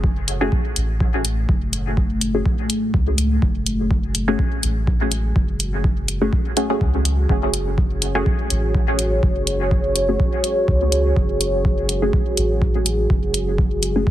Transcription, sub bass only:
0.00 0.49 F#1 loud
0.76 1.45 A1 loud
1.49 2.42 F#1 loud
2.94 3.39 C#2 loud
3.42 4.36 F#1 loud
4.63 5.32 A1 loud
5.36 6.29 F#1 loud
6.81 7.26 C#2 medium
7.29 8.23 F#1 loud
8.50 9.20 A1 loud
9.23 10.16 F#1 loud
10.68 11.13 C#2 medium
11.17 12.10 F#1 loud
12.37 13.07 A1 loud
13.10 14.03 F#1 loud

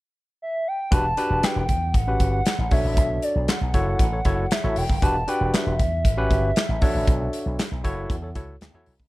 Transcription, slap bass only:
0.92 1.12 E1 loud
1.30 1.40 E1 medium
1.56 1.70 E1 medium
1.69 1.96 E2 medium
1.94 2.15 A1 loud
2.20 2.40 G1 medium
2.58 2.69 A1 medium
2.71 2.82 B1 loud
2.84 2.95 A1 medium
2.97 3.17 B1 loud
3.36 3.46 B1 medium
3.61 3.71 B1 loud
3.74 3.94 F#1 medium
3.99 4.20 A1 loud
4.25 4.46 F#1 medium
4.64 4.74 A1 loud
4.77 4.87 E1 medium
4.90 5.00 F#1 medium
5.02 5.23 E1 loud
5.41 5.51 E1 loud
5.66 5.81 E1 loud
5.79 6.06 E2 medium
6.05 6.25 A1 loud
6.31 6.51 G1 medium
6.69 6.79 A1 medium
6.82 6.92 B1 medium
6.95 7.05 A1 medium
7.07 7.28 B1 loud
7.46 7.56 B1 medium
7.72 7.82 B1 medium
7.84 8.05 F#1 medium
8.10 8.37 E2 loud
8.35 8.56 C#2 medium
8.61 8.71 D2 medium
8.74 8.84 E2 medium
8.87 8.97 B1 medium
9.00 9.08 C#2 medium

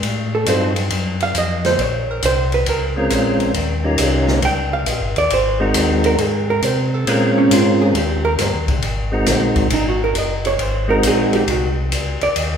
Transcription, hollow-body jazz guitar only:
0.35 0.48 A4 medium
0.49 0.67 C5 medium
1.23 1.36 F5 loud
1.38 1.65 D#5 medium
1.66 1.81 C5 loud
1.81 2.10 C#5 loud
2.10 2.23 A#4 medium
2.26 2.53 C5 loud
2.54 2.67 B4 medium
2.69 3.96 A#4 medium
4.45 4.73 G5 medium
4.73 4.89 F5 loud
4.89 5.17 D#5 medium
5.18 5.31 D5 loud
5.34 6.02 C5 loud
6.06 6.22 A#4 medium
6.22 6.49 G#4 medium
6.50 6.64 A#4 medium
6.64 6.94 C5 medium
6.94 7.09 A4 loud
7.09 7.37 A#4 loud
7.38 7.51 C#4 medium
7.53 7.81 F4 medium
7.82 7.95 G#4 loud
7.97 8.25 G4 medium
8.25 8.33 A#4 loud
9.74 9.86 D#4 medium
9.89 10.01 F#4 medium
10.04 10.16 A#4 medium
10.18 10.45 D#5 medium
10.47 10.62 C#5 loud
10.62 10.89 C5 medium
10.90 11.03 A#4 medium
11.07 11.34 G#4 medium
11.35 11.50 G4 medium
11.50 11.67 F#4 medium
12.23 12.39 D5 medium
12.39 12.57 D#5 medium

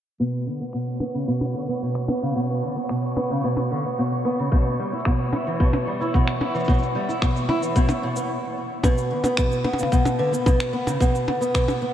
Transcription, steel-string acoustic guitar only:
0.20 0.45 B2 medium
0.47 0.59 D3 medium
0.60 0.72 B3 medium
0.73 0.99 B2 medium
1.01 1.13 B3 medium
1.14 1.26 C#3 medium
1.28 1.53 B2 medium
1.55 1.68 D3 medium
1.69 1.80 B3 medium
1.82 2.07 B2 medium
2.08 2.21 B3 medium
2.22 2.34 C#3 medium
2.36 2.61 B2 medium
2.63 2.76 D3 medium
2.76 2.88 B3 medium
2.90 3.15 B2 medium
3.17 3.29 B3 medium
3.30 3.42 C#3 medium
3.44 3.70 B2 medium
3.71 3.84 D3 medium
3.85 3.97 B3 medium
3.98 4.24 B2 medium
4.25 4.37 B3 medium
4.39 4.51 C#3 medium
4.52 4.78 B2 medium
4.79 4.92 G3 medium
4.93 5.05 E4 medium
5.06 5.32 B2 medium
5.33 5.45 E4 medium
5.47 5.59 E3 medium
5.60 5.86 B2 loud
5.87 6.00 G3 medium
6.01 6.13 E4 medium
6.14 6.40 B2 medium
6.41 6.53 E4 medium
6.54 6.67 E3 medium
6.68 6.94 B2 medium
6.95 7.08 G3 medium
7.09 7.21 E4 medium
7.22 7.48 B2 medium
7.49 7.61 E4 medium
7.62 7.75 E3 medium
7.76 7.88 B2 loud
8.03 8.15 B2 medium
8.16 8.29 B3 medium
8.84 9.10 B2 medium
9.11 9.24 D3 medium
9.24 9.37 B3 medium
9.38 9.64 B2 medium
9.65 9.77 B3 medium
9.79 9.91 C#3 medium
9.92 10.18 B2 loud
10.19 10.32 D3 medium
10.32 10.45 B3 medium
10.46 10.72 B2 medium
10.73 10.85 B3 medium
10.87 10.99 C#3 medium
11.01 11.26 B2 loud
11.28 11.40 D3 medium
11.41 11.53 B3 medium
11.55 11.80 B2 medium
11.82 11.94 B3 medium

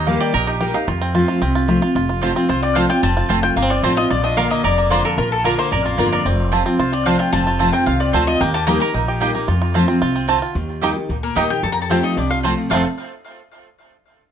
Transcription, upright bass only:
0.00 0.16 D#2 loud
0.34 0.70 A#1 medium
0.88 1.24 F2 loud
1.41 1.77 C2 medium
1.95 2.31 F1 loud
2.49 2.85 C2 medium
3.03 3.21 F1 medium
3.30 3.53 F1 medium
3.56 3.79 G1 medium
3.83 4.06 A1 medium
4.11 4.47 A#1 medium
4.64 5.00 F1 medium
5.18 5.54 A#1 loud
5.72 5.95 A1 medium
5.99 6.21 G1 medium
6.26 6.62 F1 medium
6.79 7.15 C2 medium
7.33 7.69 F1 loud
7.87 8.10 C2 medium
8.14 8.37 D2 medium
8.41 8.77 D#2 loud
8.94 9.30 A#1 medium
9.48 9.84 F2 medium
10.02 10.38 C2 medium
10.55 10.91 D#2 loud
11.09 11.32 D2 medium
11.36 11.59 D#2 medium
11.63 11.99 F2 medium
12.17 12.53 C2 medium
12.71 12.84 F1 loud

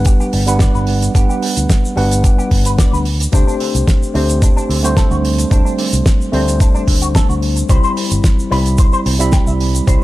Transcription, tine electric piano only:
0.00 0.44 G3 medium
0.00 0.44 B3 medium
0.00 0.44 D4 medium
0.00 0.45 B4 medium
0.00 0.44 F#5 medium
0.46 1.11 G3 medium
0.46 1.12 B3 medium
0.46 1.12 D4 medium
0.46 1.12 B4 loud
0.46 1.12 F#5 medium
1.14 1.93 G3 medium
1.14 1.93 B3 medium
1.14 1.94 D4 medium
1.14 1.94 B4 medium
1.14 1.94 F#5 medium
1.96 3.04 G3 medium
1.96 3.04 B3 medium
1.96 3.04 D4 medium
1.96 3.05 B4 loud
1.96 3.05 F#5 medium
3.32 4.11 A3 medium
3.32 4.12 C4 medium
3.32 4.12 D4 medium
3.32 4.12 G4 medium
3.32 4.12 C5 medium
4.14 4.80 A3 medium
4.14 4.80 C4 medium
4.14 4.80 D4 medium
4.14 4.81 G4 medium
4.14 4.81 C5 medium
4.83 5.49 G3 medium
4.83 5.48 A3 medium
4.83 5.48 C4 medium
4.83 5.48 D4 medium
4.83 5.49 C5 loud
5.50 6.30 G3 medium
5.50 6.29 A3 medium
5.50 6.30 C4 medium
5.50 6.30 D4 medium
5.50 6.31 C5 medium
6.32 7.67 G3 medium
6.32 7.66 A3 medium
6.32 7.66 C4 medium
6.32 7.66 D4 medium
6.32 7.67 C5 loud
7.69 8.48 G3 medium
7.69 8.48 C4 medium
7.69 8.49 E4 medium
7.69 8.49 B5 medium
8.50 9.16 G3 medium
8.50 9.17 C4 medium
8.50 9.17 E4 medium
8.50 9.17 B5 medium
9.19 9.84 G3 medium
9.19 9.84 C4 medium
9.19 9.85 E4 medium
9.19 9.85 B5 loud
9.87 10.04 G3 medium
9.87 10.04 C4 medium
9.87 10.04 E4 medium
9.87 10.04 B5 medium

